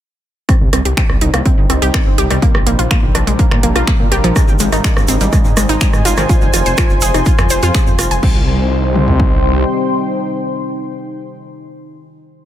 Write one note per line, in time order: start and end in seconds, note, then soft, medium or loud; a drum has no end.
0.49 8.22 C3 medium
0.49 8.22 G3 medium
0.49 0.54 C4 medium
0.49 2.42 D#4 loud
0.49 kick loud
0.49 cross-stick medium
0.49 closed hi-hat medium
0.55 3.20 C5 medium
0.61 0.69 C2 medium
0.73 0.81 C2 loud
0.73 0.79 C4 medium
0.73 cross-stick medium
0.73 closed hi-hat loud
0.85 0.93 C2 medium
0.85 0.89 G4 medium
0.85 closed hi-hat medium
0.96 1.00 C4 medium
0.96 3.17 G5 medium
0.96 finger snap loud
0.96 kick loud
0.96 closed hi-hat medium
1.09 1.18 C2 medium
1.09 cross-stick medium
1.21 1.30 C2 loud
1.21 1.25 D#4 medium
1.21 closed hi-hat loud
1.34 1.42 C2 medium
1.34 1.39 A#3 medium
1.34 3.20 C6 medium
1.34 cross-stick medium
1.34 closed hi-hat medium
1.46 1.51 C4 medium
1.46 kick loud
1.46 closed hi-hat medium
1.58 1.66 G1 medium
1.70 1.78 C2 loud
1.70 1.75 C4 medium
1.70 cross-stick medium
1.70 closed hi-hat loud
1.82 1.90 C2 medium
1.82 1.87 G4 loud
1.82 closed hi-hat medium
1.94 1.97 C4 medium
1.94 finger snap loud
1.94 kick loud
1.94 cross-stick medium
1.94 closed hi-hat medium
2.06 2.14 G1 medium
2.18 2.27 C2 loud
2.18 2.21 G4 loud
2.18 closed hi-hat loud
2.30 2.38 C2 medium
2.30 2.36 G3 loud
2.30 cross-stick medium
2.30 closed hi-hat medium
2.42 2.48 A#3 medium
2.42 4.36 D4 medium
2.42 kick loud
2.42 closed hi-hat medium
2.55 2.63 A#1 medium
2.55 5.13 A#4 medium
2.55 cross-stick medium
2.62 5.13 F5 medium
2.67 2.75 A#1 loud
2.67 2.72 A#3 medium
2.67 closed hi-hat loud
2.79 2.87 A#1 loud
2.79 2.82 F4 medium
2.79 5.13 A#5 medium
2.79 closed hi-hat medium
2.91 2.94 A#3 medium
2.91 finger snap loud
2.91 kick loud
2.91 cross-stick medium
2.91 closed hi-hat medium
3.03 3.11 A#1 medium
3.15 3.23 A#1 loud
3.15 3.18 D4 medium
3.15 cross-stick medium
3.15 closed hi-hat loud
3.27 3.35 A#1 medium
3.27 3.33 G#3 medium
3.27 closed hi-hat medium
3.39 3.45 A#3 medium
3.39 kick loud
3.39 closed hi-hat medium
3.51 3.59 A#2 medium
3.51 finger snap soft
3.51 cross-stick medium
3.63 3.72 A#1 loud
3.63 3.69 A#3 medium
3.63 closed hi-hat loud
3.76 3.84 A#1 medium
3.76 3.81 F4 loud
3.76 cross-stick medium
3.76 closed hi-hat medium
3.87 3.91 A#3 medium
3.87 finger snap loud
3.87 kick loud
3.87 closed hi-hat medium
4.00 4.08 A#2 medium
4.12 4.20 A#1 loud
4.12 4.15 G4 loud
4.12 cross-stick medium
4.12 closed hi-hat loud
4.24 4.32 A#1 medium
4.24 4.29 F3 loud
4.24 closed hi-hat medium
4.36 4.41 G#3 medium
4.36 7.07 D#4 medium
4.36 8.19 C5 medium
4.36 6.28 D#5 medium
4.36 8.19 G#5 medium
4.36 kick loud
4.36 cross-stick medium
4.36 closed hi-hat medium
4.36 shaker medium
4.48 4.56 G#1 medium
4.48 8.23 C5 medium
4.48 shaker soft
4.57 4.68 G#1 loud
4.57 4.66 G#3 medium
4.57 8.23 G#5 medium
4.57 closed hi-hat loud
4.57 shaker loud
4.72 4.80 G#1 loud
4.72 4.76 D#4 medium
4.72 cross-stick medium
4.72 closed hi-hat medium
4.72 shaker soft
4.83 4.88 G#3 medium
4.83 8.23 C6 medium
4.83 finger snap loud
4.83 kick loud
4.83 closed hi-hat medium
4.83 shaker medium
4.97 5.05 G#1 medium
4.97 cross-stick medium
4.97 shaker soft
5.08 5.17 G#1 loud
5.08 5.12 C4 medium
5.08 closed hi-hat loud
5.08 shaker loud
5.21 5.29 G#1 medium
5.21 5.26 G3 medium
5.21 closed hi-hat medium
5.21 shaker soft
5.33 5.38 G#3 medium
5.33 kick loud
5.33 cross-stick medium
5.33 closed hi-hat medium
5.33 shaker medium
5.45 5.53 G#2 medium
5.45 shaker soft
5.57 5.65 G#1 loud
5.57 5.62 G#3 medium
5.57 cross-stick medium
5.57 closed hi-hat loud
5.57 shaker loud
5.69 5.77 G#1 medium
5.69 5.75 D#4 loud
5.69 closed hi-hat medium
5.69 shaker soft
5.81 5.84 G#3 medium
5.81 finger snap loud
5.81 kick loud
5.81 closed hi-hat medium
5.81 shaker medium
5.93 6.01 G#2 medium
5.93 cross-stick medium
5.93 shaker soft
6.05 6.14 G#1 loud
6.05 6.09 F4 loud
6.05 closed hi-hat loud
6.05 shaker loud
6.17 6.26 G#1 medium
6.17 6.23 D#3 loud
6.17 cross-stick medium
6.17 closed hi-hat medium
6.17 shaker soft
6.29 8.23 F4 medium
6.29 8.21 F4 medium
6.29 6.35 F4 medium
6.29 kick loud
6.29 closed hi-hat medium
6.29 shaker medium
6.41 6.50 F1 medium
6.41 shaker soft
6.54 6.62 F1 loud
6.54 6.59 F4 medium
6.54 cross-stick soft
6.54 closed hi-hat loud
6.54 shaker loud
6.66 6.74 F1 loud
6.66 6.69 C5 medium
6.66 closed hi-hat medium
6.66 shaker soft
6.77 6.81 F4 medium
6.77 finger snap loud
6.77 kick loud
6.77 cross-stick medium
6.77 closed hi-hat medium
6.77 shaker medium
6.90 6.98 F1 medium
6.90 shaker soft
7.01 7.10 F1 loud
7.01 7.05 G#4 medium
7.01 closed hi-hat loud
7.01 shaker loud
7.14 7.22 F1 medium
7.14 7.20 D#4 medium
7.14 cross-stick medium
7.14 closed hi-hat medium
7.14 shaker soft
7.26 7.32 F4 medium
7.26 kick loud
7.26 closed hi-hat medium
7.26 shaker medium
7.38 7.47 F2 medium
7.38 finger snap soft
7.38 cross-stick medium
7.38 shaker soft
7.50 7.59 F1 loud
7.50 7.56 C5 medium
7.50 closed hi-hat loud
7.50 shaker loud
7.63 7.71 F2 medium
7.63 7.66 F4 loud
7.63 closed hi-hat medium
7.63 shaker soft
7.75 7.80 G#4 medium
7.75 finger snap loud
7.75 kick loud
7.75 cross-stick medium
7.75 closed hi-hat medium
7.75 shaker medium
7.87 7.95 F2 medium
7.87 shaker soft
7.99 8.07 F1 loud
7.99 8.02 F4 medium
7.99 cross-stick medium
7.99 closed hi-hat loud
7.99 shaker loud
8.11 8.19 F1 medium
8.11 8.14 G#5 medium
8.11 closed hi-hat medium
8.11 shaker soft
8.23 9.64 C2 medium
8.23 11.41 C3 medium
8.23 11.41 G3 medium
8.23 11.41 C4 medium
8.23 8.45 C4 loud
8.23 11.41 D#4 medium
8.23 11.41 C5 medium
8.23 11.41 D#5 medium
8.23 11.41 G5 medium
8.23 kick loud
8.23 crash medium
8.30 11.48 C5 medium
8.38 11.55 G5 medium
8.45 11.62 C6 medium
8.95 mid tom medium
9.08 floor tom medium
9.20 kick medium